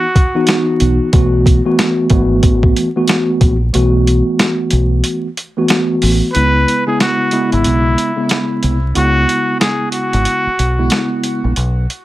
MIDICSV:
0, 0, Header, 1, 6, 480
1, 0, Start_track
1, 0, Key_signature, 4, "minor"
1, 0, Tempo, 652174
1, 832, Time_signature, 4, 2, 24, 8
1, 8868, End_track
2, 0, Start_track
2, 0, Title_t, "Muted trumpet"
2, 0, Program_c, 0, 59
2, 0, Note_on_c, 0, 66, 88
2, 461, Note_off_c, 0, 66, 0
2, 4659, Note_on_c, 0, 71, 106
2, 5028, Note_off_c, 0, 71, 0
2, 5056, Note_on_c, 0, 68, 81
2, 5141, Note_off_c, 0, 68, 0
2, 5161, Note_on_c, 0, 66, 91
2, 5520, Note_off_c, 0, 66, 0
2, 5541, Note_on_c, 0, 64, 81
2, 6230, Note_off_c, 0, 64, 0
2, 6602, Note_on_c, 0, 66, 111
2, 7048, Note_off_c, 0, 66, 0
2, 7067, Note_on_c, 0, 68, 81
2, 7285, Note_off_c, 0, 68, 0
2, 7303, Note_on_c, 0, 66, 93
2, 8144, Note_off_c, 0, 66, 0
2, 8868, End_track
3, 0, Start_track
3, 0, Title_t, "Tine electric piano"
3, 0, Program_c, 1, 4
3, 254, Note_on_c, 1, 52, 95
3, 258, Note_on_c, 1, 59, 87
3, 261, Note_on_c, 1, 63, 92
3, 265, Note_on_c, 1, 66, 115
3, 792, Note_off_c, 1, 52, 0
3, 794, Note_off_c, 1, 59, 0
3, 796, Note_off_c, 1, 63, 0
3, 798, Note_off_c, 1, 66, 0
3, 828, Note_on_c, 1, 52, 93
3, 831, Note_on_c, 1, 57, 89
3, 835, Note_on_c, 1, 59, 85
3, 839, Note_on_c, 1, 66, 111
3, 1181, Note_off_c, 1, 52, 0
3, 1183, Note_off_c, 1, 57, 0
3, 1185, Note_off_c, 1, 59, 0
3, 1187, Note_off_c, 1, 66, 0
3, 1213, Note_on_c, 1, 52, 97
3, 1217, Note_on_c, 1, 57, 89
3, 1221, Note_on_c, 1, 59, 94
3, 1224, Note_on_c, 1, 66, 108
3, 1527, Note_off_c, 1, 52, 0
3, 1529, Note_off_c, 1, 57, 0
3, 1531, Note_off_c, 1, 59, 0
3, 1532, Note_off_c, 1, 66, 0
3, 1544, Note_on_c, 1, 52, 92
3, 1548, Note_on_c, 1, 57, 83
3, 1551, Note_on_c, 1, 59, 89
3, 1556, Note_on_c, 1, 66, 104
3, 2116, Note_off_c, 1, 52, 0
3, 2117, Note_off_c, 1, 57, 0
3, 2119, Note_off_c, 1, 59, 0
3, 2121, Note_off_c, 1, 66, 0
3, 2175, Note_on_c, 1, 52, 92
3, 2178, Note_on_c, 1, 57, 86
3, 2182, Note_on_c, 1, 59, 86
3, 2185, Note_on_c, 1, 66, 111
3, 2610, Note_off_c, 1, 52, 0
3, 2611, Note_off_c, 1, 57, 0
3, 2613, Note_off_c, 1, 59, 0
3, 2615, Note_off_c, 1, 66, 0
3, 2747, Note_on_c, 1, 52, 95
3, 2749, Note_on_c, 1, 57, 87
3, 2753, Note_on_c, 1, 59, 82
3, 2757, Note_on_c, 1, 66, 109
3, 3874, Note_off_c, 1, 52, 0
3, 3875, Note_off_c, 1, 57, 0
3, 3877, Note_off_c, 1, 59, 0
3, 3879, Note_off_c, 1, 66, 0
3, 4097, Note_on_c, 1, 52, 96
3, 4101, Note_on_c, 1, 57, 88
3, 4105, Note_on_c, 1, 59, 84
3, 4108, Note_on_c, 1, 66, 107
3, 4634, Note_off_c, 1, 52, 0
3, 4636, Note_off_c, 1, 57, 0
3, 4638, Note_off_c, 1, 59, 0
3, 4639, Note_off_c, 1, 66, 0
3, 4666, Note_on_c, 1, 49, 95
3, 4670, Note_on_c, 1, 56, 86
3, 4673, Note_on_c, 1, 59, 82
3, 4677, Note_on_c, 1, 64, 98
3, 5020, Note_off_c, 1, 49, 0
3, 5022, Note_off_c, 1, 56, 0
3, 5024, Note_off_c, 1, 59, 0
3, 5026, Note_off_c, 1, 64, 0
3, 5051, Note_on_c, 1, 49, 89
3, 5055, Note_on_c, 1, 56, 88
3, 5059, Note_on_c, 1, 59, 83
3, 5062, Note_on_c, 1, 64, 104
3, 5366, Note_off_c, 1, 49, 0
3, 5368, Note_off_c, 1, 56, 0
3, 5370, Note_off_c, 1, 59, 0
3, 5371, Note_off_c, 1, 64, 0
3, 5387, Note_on_c, 1, 49, 89
3, 5389, Note_on_c, 1, 56, 88
3, 5393, Note_on_c, 1, 59, 86
3, 5397, Note_on_c, 1, 64, 113
3, 5957, Note_off_c, 1, 49, 0
3, 5958, Note_off_c, 1, 56, 0
3, 5960, Note_off_c, 1, 59, 0
3, 5962, Note_off_c, 1, 64, 0
3, 6006, Note_on_c, 1, 49, 96
3, 6009, Note_on_c, 1, 56, 82
3, 6013, Note_on_c, 1, 59, 87
3, 6016, Note_on_c, 1, 64, 93
3, 6445, Note_off_c, 1, 49, 0
3, 6447, Note_off_c, 1, 56, 0
3, 6449, Note_off_c, 1, 59, 0
3, 6450, Note_off_c, 1, 64, 0
3, 6579, Note_on_c, 1, 49, 97
3, 6583, Note_on_c, 1, 56, 81
3, 6586, Note_on_c, 1, 59, 84
3, 6589, Note_on_c, 1, 64, 100
3, 7710, Note_off_c, 1, 49, 0
3, 7712, Note_off_c, 1, 56, 0
3, 7714, Note_off_c, 1, 59, 0
3, 7716, Note_off_c, 1, 64, 0
3, 7931, Note_on_c, 1, 49, 88
3, 7935, Note_on_c, 1, 56, 83
3, 7938, Note_on_c, 1, 59, 93
3, 7942, Note_on_c, 1, 64, 98
3, 8471, Note_off_c, 1, 49, 0
3, 8473, Note_off_c, 1, 56, 0
3, 8475, Note_off_c, 1, 59, 0
3, 8476, Note_off_c, 1, 64, 0
3, 8868, End_track
4, 0, Start_track
4, 0, Title_t, "Fingered electric bass"
4, 0, Program_c, 2, 33
4, 597, Note_on_c, 2, 35, 88
4, 722, Note_off_c, 2, 35, 0
4, 834, Note_on_c, 2, 35, 103
4, 1171, Note_off_c, 2, 35, 0
4, 1550, Note_on_c, 2, 32, 98
4, 1760, Note_off_c, 2, 32, 0
4, 1791, Note_on_c, 2, 33, 94
4, 2001, Note_off_c, 2, 33, 0
4, 2511, Note_on_c, 2, 34, 86
4, 2721, Note_off_c, 2, 34, 0
4, 2759, Note_on_c, 2, 35, 100
4, 3093, Note_off_c, 2, 35, 0
4, 3477, Note_on_c, 2, 35, 94
4, 3685, Note_off_c, 2, 35, 0
4, 4438, Note_on_c, 2, 33, 90
4, 4563, Note_off_c, 2, 33, 0
4, 4678, Note_on_c, 2, 37, 105
4, 4885, Note_off_c, 2, 37, 0
4, 5543, Note_on_c, 2, 32, 95
4, 5623, Note_off_c, 2, 32, 0
4, 5636, Note_on_c, 2, 35, 99
4, 5844, Note_off_c, 2, 35, 0
4, 6356, Note_on_c, 2, 36, 87
4, 6564, Note_off_c, 2, 36, 0
4, 6595, Note_on_c, 2, 37, 105
4, 6804, Note_off_c, 2, 37, 0
4, 7461, Note_on_c, 2, 32, 92
4, 7542, Note_off_c, 2, 32, 0
4, 7794, Note_on_c, 2, 35, 92
4, 8003, Note_off_c, 2, 35, 0
4, 8421, Note_on_c, 2, 34, 90
4, 8502, Note_off_c, 2, 34, 0
4, 8516, Note_on_c, 2, 35, 101
4, 8724, Note_off_c, 2, 35, 0
4, 8868, End_track
5, 0, Start_track
5, 0, Title_t, "Muted fingered electric bass strokes"
5, 7702, Note_on_c, 9, 29, 47
5, 7776, Note_off_c, 9, 29, 0
5, 8868, End_track
6, 0, Start_track
6, 0, Title_t, "Drums"
6, 113, Note_on_c, 9, 36, 99
6, 116, Note_on_c, 9, 42, 84
6, 187, Note_off_c, 9, 36, 0
6, 189, Note_off_c, 9, 42, 0
6, 344, Note_on_c, 9, 42, 100
6, 358, Note_on_c, 9, 38, 120
6, 418, Note_off_c, 9, 42, 0
6, 431, Note_off_c, 9, 38, 0
6, 590, Note_on_c, 9, 42, 81
6, 663, Note_off_c, 9, 42, 0
6, 830, Note_on_c, 9, 42, 94
6, 832, Note_on_c, 9, 36, 121
6, 904, Note_off_c, 9, 42, 0
6, 905, Note_off_c, 9, 36, 0
6, 1073, Note_on_c, 9, 36, 105
6, 1079, Note_on_c, 9, 42, 78
6, 1147, Note_off_c, 9, 36, 0
6, 1153, Note_off_c, 9, 42, 0
6, 1315, Note_on_c, 9, 42, 98
6, 1317, Note_on_c, 9, 38, 111
6, 1389, Note_off_c, 9, 42, 0
6, 1390, Note_off_c, 9, 38, 0
6, 1543, Note_on_c, 9, 42, 75
6, 1548, Note_on_c, 9, 36, 96
6, 1616, Note_off_c, 9, 42, 0
6, 1621, Note_off_c, 9, 36, 0
6, 1787, Note_on_c, 9, 42, 96
6, 1788, Note_on_c, 9, 36, 96
6, 1861, Note_off_c, 9, 42, 0
6, 1862, Note_off_c, 9, 36, 0
6, 1936, Note_on_c, 9, 36, 88
6, 2010, Note_off_c, 9, 36, 0
6, 2035, Note_on_c, 9, 42, 80
6, 2108, Note_off_c, 9, 42, 0
6, 2263, Note_on_c, 9, 42, 95
6, 2277, Note_on_c, 9, 38, 118
6, 2337, Note_off_c, 9, 42, 0
6, 2350, Note_off_c, 9, 38, 0
6, 2508, Note_on_c, 9, 36, 99
6, 2509, Note_on_c, 9, 42, 79
6, 2582, Note_off_c, 9, 36, 0
6, 2583, Note_off_c, 9, 42, 0
6, 2751, Note_on_c, 9, 42, 92
6, 2825, Note_off_c, 9, 42, 0
6, 2999, Note_on_c, 9, 42, 79
6, 3072, Note_off_c, 9, 42, 0
6, 3234, Note_on_c, 9, 42, 96
6, 3235, Note_on_c, 9, 38, 114
6, 3307, Note_off_c, 9, 42, 0
6, 3309, Note_off_c, 9, 38, 0
6, 3463, Note_on_c, 9, 42, 77
6, 3536, Note_off_c, 9, 42, 0
6, 3707, Note_on_c, 9, 42, 98
6, 3781, Note_off_c, 9, 42, 0
6, 3955, Note_on_c, 9, 42, 83
6, 4028, Note_off_c, 9, 42, 0
6, 4184, Note_on_c, 9, 42, 93
6, 4197, Note_on_c, 9, 38, 117
6, 4257, Note_off_c, 9, 42, 0
6, 4271, Note_off_c, 9, 38, 0
6, 4430, Note_on_c, 9, 46, 58
6, 4503, Note_off_c, 9, 46, 0
6, 4671, Note_on_c, 9, 42, 91
6, 4745, Note_off_c, 9, 42, 0
6, 4919, Note_on_c, 9, 42, 76
6, 4992, Note_off_c, 9, 42, 0
6, 5154, Note_on_c, 9, 42, 96
6, 5156, Note_on_c, 9, 38, 107
6, 5228, Note_off_c, 9, 42, 0
6, 5229, Note_off_c, 9, 38, 0
6, 5382, Note_on_c, 9, 42, 74
6, 5456, Note_off_c, 9, 42, 0
6, 5537, Note_on_c, 9, 42, 54
6, 5611, Note_off_c, 9, 42, 0
6, 5626, Note_on_c, 9, 42, 94
6, 5700, Note_off_c, 9, 42, 0
6, 5874, Note_on_c, 9, 42, 80
6, 5948, Note_off_c, 9, 42, 0
6, 6103, Note_on_c, 9, 42, 95
6, 6117, Note_on_c, 9, 38, 115
6, 6177, Note_off_c, 9, 42, 0
6, 6190, Note_off_c, 9, 38, 0
6, 6349, Note_on_c, 9, 42, 75
6, 6422, Note_off_c, 9, 42, 0
6, 6590, Note_on_c, 9, 42, 93
6, 6663, Note_off_c, 9, 42, 0
6, 6837, Note_on_c, 9, 42, 75
6, 6911, Note_off_c, 9, 42, 0
6, 7073, Note_on_c, 9, 42, 93
6, 7074, Note_on_c, 9, 38, 106
6, 7147, Note_off_c, 9, 42, 0
6, 7148, Note_off_c, 9, 38, 0
6, 7302, Note_on_c, 9, 42, 73
6, 7376, Note_off_c, 9, 42, 0
6, 7458, Note_on_c, 9, 42, 52
6, 7531, Note_off_c, 9, 42, 0
6, 7546, Note_on_c, 9, 42, 95
6, 7620, Note_off_c, 9, 42, 0
6, 7794, Note_on_c, 9, 42, 80
6, 7868, Note_off_c, 9, 42, 0
6, 8022, Note_on_c, 9, 42, 95
6, 8036, Note_on_c, 9, 38, 117
6, 8096, Note_off_c, 9, 42, 0
6, 8109, Note_off_c, 9, 38, 0
6, 8269, Note_on_c, 9, 42, 77
6, 8343, Note_off_c, 9, 42, 0
6, 8510, Note_on_c, 9, 42, 89
6, 8584, Note_off_c, 9, 42, 0
6, 8758, Note_on_c, 9, 42, 76
6, 8832, Note_off_c, 9, 42, 0
6, 8868, End_track
0, 0, End_of_file